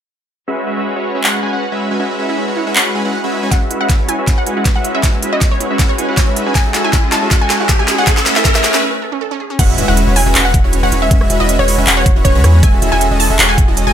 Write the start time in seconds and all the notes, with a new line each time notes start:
0.48 G#3 C#4 F#4 B4 E5
0.67 G#3 C#4 F#4 B4 E5
0.77 G#3 C#4 F#4 B4 E5
0.96 G#3 C#4 F#4 B4 C#5
1.15 G#3 C#4 F#4 B4 E5
1.24 G#3 C#4 F#4 B4 F#5, clap
1.43 G#3 C#4 F#4 B4 G#5
1.53 G#3 C#4 F#4 B4 F#5
1.72 G#3 C#4 F#4 B4 E5
1.91 G#3 C#4 F#4 B4 G#5
1.99 G#3 C#4 F#4 B4 E5
2.19 G#3 C#4 E4 F#4 B4 E5
2.29 G#3 C#4 E4 F#4 B4 E5
2.38 C#4
2.48 G#3 C#4 F#4 B4 C#5
2.57 E4
2.67 G#3 C#4 F#4 B4 E5
2.75 G#3 C#4 F#4 B4 F#5, clap
2.95 G#3 C#4 E4 F#4 B4 G#5
3.05 G#3 C#4 E4 F#4 B4 F#5
3.13 C#4
3.24 G#3 C#4 F#4 B4 E5
3.32 E4
3.43 G#3 C#4 F#4 B4 G#5
3.51 G#3 C#4 F#4 B4 E5 F#5, kick, snare, closed hi-hat, riser
3.71 G#3 C#4 E4 F#4 B4 E5, closed hi-hat
3.81 G#3 C#4 E4 F#4 B4 E5 F#5
3.89 C#4, kick, snare, closed hi-hat
4.00 G#3 C#4 F#4 B4 C#5
4.09 E4 G#5, closed hi-hat
4.19 G#3 C#4 F#4 B4 E5
4.27 G#3 C#4 F#4 B4 F#5, kick, snare, closed hi-hat
4.38 F#5
4.46 G#3 C#4 E4 F#4 B4 G#5, closed hi-hat
4.57 G#3 C#4 E4 F#4 B4 F#5
4.65 C#4, kick, snare, closed hi-hat
4.76 G#3 C#4 F#4 B4 E5 F#5
4.84 E4, closed hi-hat
4.95 G#3 C#4 F#4 B4 E5 G#5
5.03 G#3 C#4 F#4 B4 E5, kick, snare, closed hi-hat
5.22 G#3 C#4 E4 F#4 B4 E5, closed hi-hat
5.33 G#3 C#4 E4 F#4 B4 D#5 E5
5.41 C#4, kick, snare, closed hi-hat
5.51 G#3 C#4 F#4 B4 C#5
5.60 E4, closed hi-hat
5.71 G#3 C#4 F#4 B4 E5
5.79 G#3 C#4 F#4 B4 F#5, kick, snare, closed hi-hat
5.89 C#5
5.98 G#3 C#4 E4 F#4 B4 G#5, closed hi-hat
6.08 G#3 C#4 E4 F#4 B4 F#5
6.17 C#4 C#5, kick, snare, closed hi-hat
6.27 G#3 C#4 F#4 B4 E5
6.36 E4, closed hi-hat
6.46 G#3 C#4 F#4 B4 G#5
6.55 G#3 C#4 F#4 A4 E5 G#5, kick, snare, closed hi-hat
6.74 G#3 C#4 E4 F#4 A4 E5, snare, closed hi-hat
6.84 G#3 C#4 E4 F#4 A4 E5 G#5
6.93 C#4, kick, snare, closed hi-hat
7.03 G#3 C#4 F#4 A4 D#5
7.12 E4 A5, snare, closed hi-hat
7.22 G#3 C#4 F#4 A4 E5
7.31 G#3 C#4 F#4 A4 F#5, kick, snare, closed hi-hat
7.41 G#5
7.50 G#3 C#4 E4 F#4 A4 G#5, snare, closed hi-hat
7.60 G#3 C#4 E4 F#4 A4 F#5
7.69 C#4, kick, snare, closed hi-hat
7.79 G#3 C#4 F#4 A4 E5 G#5
7.88 E4, snare, closed hi-hat
7.98 G#3 C#4 F#4 A4 F#5 G#5
8.07 A3 C#4 G#4 B4 E5, kick, snare, closed hi-hat
8.17 snare
8.26 A3 C#4 E4 G#4 B4 E5, snare, closed hi-hat
8.36 A3 C#4 E4 G#4 B4 E5, snare
8.45 C#4, kick, snare, closed hi-hat
8.55 A3 C#4 G#4 B4 C#5 E5, snare
8.64 E4, snare, closed hi-hat
8.74 A3 C#4 G#4 B4 E5, snare
8.83 C#4
9.02 A4
9.12 C#4
9.21 A4
9.31 C#4
9.40 G#4
9.50 C#4
9.59 E1 G#3 C#4 F#4 B4 E5 F#5, kick, closed hi-hat, crash, impact
9.78 E1 G#3 C#4 E4 F#4 B4 E5, closed hi-hat
9.88 E1 G#3 C#4 E4 F#4 B4 E5 F#5
9.97 C#4, closed hi-hat
10.07 E1 G#3 C#4 F#4 B4 C#5
10.16 E4 G#5, open hi-hat
10.26 E1 G#3 C#4 F#4 B4 E5
10.35 E1 G#3 C#4 F#4 B4 F#5, clap, closed hi-hat
10.45 F#5
10.54 E4, kick, closed hi-hat
10.64 E1 G#3 C#4 E4 F#4 B4 C#5
10.73 C#4, closed hi-hat
10.83 E1 G#3 C#4 F#4 B4 C#5 F#5
10.92 E1 G#3 C#4 E4 F#4 B4 C#5, closed hi-hat
11.02 C#4 E5
11.11 E1 G#3 C#4 F#4 B4 E5, kick, closed hi-hat
11.21 cross-stick
11.30 E1 G#3 C#4 E4 F#4 B4 E5, closed hi-hat
11.40 E1 G#3 C#4 E4 F#4 B4 D#5 E5
11.49 C#4, closed hi-hat
11.59 E1 G#3 C#4 F#4 B4 C#5
11.68 E4, open hi-hat
11.78 E1 G#3 C#4 F#4 B4 E5
11.87 E1 G#3 C#4 F#4 B4 F#5, clap, closed hi-hat
11.97 C#5
12.06 E4, kick, closed hi-hat
12.16 E1 G#3 C#4 E4 F#4 B4 C#5
12.25 C#4 C#5, kick, closed hi-hat
12.35 E2 G#3 C#4 F#4 B4 C#5
12.44 E2 G#3 C#4 E4 F#4 B4 C#5, cross-stick, closed hi-hat
12.54 C#4
12.63 E1 G#3 C#4 F#4 A4 E5 G#5, kick, closed hi-hat
12.82 E1 G#3 C#4 E4 F#4 A4 E5, closed hi-hat
12.92 E1 G#3 C#4 E4 F#4 A4 E5 G#5
13.01 C#4, closed hi-hat
13.11 E1 G#3 C#4 F#4 A4 D#5
13.20 E4 A5, open hi-hat
13.30 E1 G#3 C#4 F#4 A4 E5
13.39 E1 G#3 C#4 F#4 A4 F#5, clap, closed hi-hat
13.49 G#5
13.58 E4, kick, closed hi-hat
13.68 E1 G#3 C#4 E4 F#4 A4 D#5
13.77 C#4, closed hi-hat
13.87 E1 G#3 C#4 F#4 A4 D#5 G#5